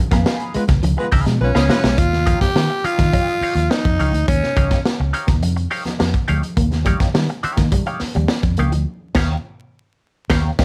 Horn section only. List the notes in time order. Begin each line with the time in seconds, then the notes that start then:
0.54 G#3 B3 F4 B4
0.98 G#3 B3 F4 B4
1.41 G#3 B3 F4 B4
1.70 G#3 B3 F4 B4